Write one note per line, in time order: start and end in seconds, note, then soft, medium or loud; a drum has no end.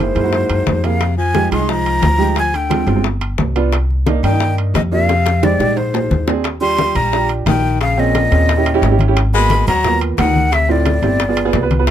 0.00 0.86 G#2 medium
0.00 0.10 E4 medium
0.00 0.86 C5 medium
0.15 0.47 F#2 medium
0.15 0.21 A#3 medium
0.15 0.21 E4 medium
0.15 0.21 G#4 medium
0.15 high bongo soft
0.15 high conga soft
0.15 high timbale medium
0.23 0.65 A#3 medium
0.23 0.65 E4 medium
0.23 0.65 F#4 medium
0.33 high bongo medium
0.33 high conga soft
0.49 0.65 F#2 medium
0.49 high bongo soft
0.49 high conga soft
0.49 high timbale medium
0.67 1.46 F2 medium
0.67 high bongo medium
0.67 low bongo medium
0.67 high conga medium
0.67 low timbale medium
0.83 1.17 C3 medium
0.83 1.00 A#3 medium
0.83 1.00 E4 medium
0.83 1.00 G#4 medium
0.83 1.17 F5 medium
0.83 high conga soft
0.83 high timbale medium
1.01 high bongo medium
1.01 high conga soft
1.01 high timbale medium
1.18 1.49 F3 medium
1.18 1.49 G#5 medium
1.18 high conga soft
1.35 1.46 G#3 medium
1.35 1.46 D#4 medium
1.35 1.46 G4 medium
1.35 high bongo medium
1.35 high conga medium
1.35 high timbale medium
1.35 low timbale medium
1.51 1.99 C2 medium
1.51 1.57 G#3 medium
1.51 1.71 G#3 medium
1.51 1.57 D#4 medium
1.51 1.58 F4 medium
1.51 1.71 C6 medium
1.51 high conga soft
1.51 high timbale medium
1.59 2.01 G#3 medium
1.59 2.01 D#4 medium
1.59 2.01 G#4 medium
1.69 2.37 F3 loud
1.69 2.37 A#5 loud
1.69 high bongo medium
1.69 high conga soft
1.86 high conga soft
1.86 high timbale medium
2.02 2.82 D2 medium
2.02 high bongo medium
2.02 low bongo medium
2.02 high conga medium
2.02 high timbale medium
2.02 low timbale medium
2.18 2.36 G#3 medium
2.18 2.36 D#4 medium
2.18 2.36 G4 loud
2.18 high conga soft
2.36 2.57 F3 medium
2.36 2.57 G#5 loud
2.36 high bongo medium
2.36 high conga soft
2.36 high timbale medium
2.54 3.05 D3 medium
2.54 3.06 G5 medium
2.54 high bongo soft
2.54 high conga soft
2.54 high timbale medium
2.69 2.82 G#3 medium
2.69 2.82 C4 medium
2.69 2.82 F4 medium
2.69 high bongo soft
2.69 high conga medium
2.69 high timbale medium
2.69 low timbale medium
2.86 3.34 G1 medium
2.86 2.93 G#3 medium
2.86 2.93 C4 medium
2.86 2.93 F4 medium
2.86 high bongo soft
2.86 high conga soft
2.86 high timbale medium
2.96 3.04 G#3 medium
2.96 3.04 C4 medium
2.96 3.04 F4 medium
3.04 high bongo medium
3.04 high conga soft
3.21 high bongo soft
3.21 high conga soft
3.21 high timbale medium
3.38 4.18 C2 medium
3.38 high bongo medium
3.38 low bongo medium
3.38 high conga medium
3.38 low timbale medium
3.56 3.73 B3 medium
3.56 3.73 D4 medium
3.56 3.73 F4 loud
3.56 high conga soft
3.56 high timbale medium
3.73 high bongo medium
3.73 high conga soft
3.73 high timbale medium
3.91 high conga soft
4.06 4.19 A#3 medium
4.06 4.19 D4 medium
4.06 4.19 D#4 medium
4.06 high bongo medium
4.06 high conga medium
4.06 high timbale medium
4.06 low timbale soft
4.23 4.71 G2 medium
4.23 4.55 D#3 medium
4.23 4.30 A#3 medium
4.23 4.30 D4 medium
4.23 4.30 D#4 medium
4.23 4.55 G5 medium
4.23 high conga soft
4.23 high timbale medium
4.32 4.74 A#3 medium
4.32 4.74 D4 medium
4.32 4.74 D#4 medium
4.40 high bongo medium
4.40 high conga soft
4.58 high conga soft
4.58 high timbale medium
4.74 5.54 F2 medium
4.74 4.82 C3 medium
4.74 4.81 D#5 medium
4.74 high bongo medium
4.74 low bongo medium
4.74 high conga medium
4.74 high timbale medium
4.74 low timbale medium
4.92 5.46 C3 medium
4.92 5.09 A#3 medium
4.92 5.09 D4 medium
4.92 5.09 F4 medium
4.92 5.46 F5 loud
4.92 high conga soft
5.09 high bongo medium
5.09 high conga soft
5.09 high timbale medium
5.26 high bongo medium
5.26 high conga soft
5.26 high timbale medium
5.43 5.79 G#2 medium
5.43 5.55 G#3 medium
5.43 5.55 D#4 medium
5.43 5.55 G4 medium
5.43 5.79 D5 medium
5.43 high bongo medium
5.43 high conga medium
5.43 high timbale medium
5.59 6.07 A#1 medium
5.59 5.66 G#3 medium
5.59 5.66 D#4 medium
5.59 5.66 G4 medium
5.59 low bongo medium
5.59 high conga soft
5.59 high timbale medium
5.68 5.77 G#3 medium
5.68 5.77 D#4 soft
5.68 5.77 G4 medium
5.77 6.29 G#2 medium
5.77 6.28 C5 medium
5.77 high conga soft
5.77 high timbale medium
5.94 low bongo medium
5.94 high conga soft
5.94 low timbale medium
6.11 6.90 D#2 medium
6.11 low bongo medium
6.11 high conga medium
6.27 6.45 C4 medium
6.27 6.45 D4 medium
6.27 6.45 G#4 loud
6.27 low bongo medium
6.27 high conga soft
6.27 low timbale medium
6.44 high bongo medium
6.44 high conga soft
6.44 high timbale medium
6.61 6.95 G3 medium
6.61 6.97 D4 medium
6.61 6.97 F4 medium
6.61 6.97 G4 medium
6.61 6.97 C6 loud
6.61 high conga soft
6.78 high bongo medium
6.78 high conga medium
6.78 high timbale medium
6.78 low timbale medium
6.95 7.43 A#1 medium
6.95 7.29 G3 medium
6.95 7.30 A#5 medium
6.95 high conga soft
6.95 low conga medium
6.95 high timbale medium
7.13 7.60 D4 medium
7.13 7.60 F4 medium
7.13 7.61 G4 medium
7.13 high bongo medium
7.13 high conga soft
7.29 high conga soft
7.29 high timbale medium
7.46 8.26 A#1 medium
7.46 7.78 D#3 medium
7.46 7.79 G5 medium
7.46 high bongo medium
7.46 low bongo medium
7.46 high conga medium
7.46 high timbale medium
7.46 low timbale medium
7.81 8.00 C#3 medium
7.81 8.01 F5 loud
7.81 high bongo medium
7.81 high conga soft
7.81 high timbale medium
7.98 9.00 A#2 medium
7.98 8.21 C4 medium
7.98 8.22 C#4 medium
7.98 8.22 G#4 medium
7.98 9.01 D#5 medium
7.98 high conga soft
8.15 high bongo medium
8.15 high conga medium
8.15 high timbale medium
8.15 low timbale medium
8.31 8.79 D#2 medium
8.31 8.49 C4 medium
8.31 8.49 C#4 medium
8.31 8.49 G#4 medium
8.31 high bongo soft
8.31 high conga soft
8.31 high timbale medium
8.49 high bongo medium
8.49 high conga soft
8.49 high timbale medium
8.57 8.69 C#4 medium
8.57 8.69 E4 medium
8.57 8.69 G4 medium
8.65 high bongo soft
8.65 high conga soft
8.65 high timbale medium
8.74 8.86 C#4 loud
8.74 8.86 E4 medium
8.74 8.86 G4 loud
8.82 9.61 G#1 loud
8.82 high bongo medium
8.82 low bongo medium
8.82 high conga soft
8.82 low timbale medium
8.91 9.03 C#4 medium
8.91 9.03 E4 medium
8.91 9.03 G4 medium
8.99 high bongo soft
8.99 high conga medium
8.99 high timbale medium
9.08 9.17 C#4 medium
9.08 9.16 E4 medium
9.08 9.17 G4 loud
9.17 high bongo medium
9.17 high timbale medium
9.34 9.66 G#3 loud
9.34 9.69 A#3 medium
9.34 9.69 B3 medium
9.34 9.69 F#4 medium
9.34 9.65 B5 loud
9.34 high conga soft
9.50 high bongo medium
9.50 high conga medium
9.50 high timbale medium
9.50 low timbale medium
9.67 10.15 D#2 medium
9.67 9.99 F#3 medium
9.67 9.99 A#5 loud
9.67 high conga soft
9.67 low conga medium
9.67 high timbale medium
9.85 10.32 A#3 medium
9.85 10.32 B3 medium
9.85 10.32 F4 medium
9.85 high bongo medium
9.85 high conga soft
9.85 low conga medium
10.01 high conga soft
10.01 high timbale medium
10.18 10.97 D2 loud
10.18 10.54 D#3 medium
10.18 10.55 F#5 medium
10.18 high bongo medium
10.18 low bongo medium
10.18 high conga medium
10.18 high timbale medium
10.18 low timbale medium
10.36 high conga medium
10.52 10.71 C3 medium
10.52 10.73 E5 loud
10.52 high bongo medium
10.52 high conga soft
10.52 high timbale medium
10.69 11.20 A2 medium
10.69 10.93 C4 medium
10.69 10.93 E4 medium
10.69 10.93 F4 medium
10.69 11.72 D5 medium
10.69 high conga soft
10.86 high bongo medium
10.86 high conga medium
10.86 high timbale medium
10.86 low timbale medium
11.02 11.50 G1 medium
11.02 11.20 C4 medium
11.02 11.20 E4 medium
11.02 11.20 G4 medium
11.02 high bongo soft
11.02 high conga soft
11.02 high timbale medium
11.20 high bongo medium
11.20 high conga soft
11.20 high timbale medium
11.29 11.40 B3 medium
11.29 11.41 F4 medium
11.29 11.41 G#4 medium
11.37 high bongo soft
11.37 high conga soft
11.37 high timbale medium
11.45 11.57 B3 medium
11.45 11.57 F4 medium
11.45 11.57 G#4 loud
11.53 11.91 C2 medium
11.53 high bongo medium
11.53 low bongo medium
11.53 high conga soft
11.53 low timbale medium
11.62 11.74 B3 medium
11.62 11.74 F4 medium
11.62 11.74 B4 medium
11.71 high bongo soft
11.71 high conga medium
11.71 high timbale medium
11.79 11.88 B3 medium
11.79 11.88 F4 medium
11.79 11.88 B4 medium
11.87 high bongo medium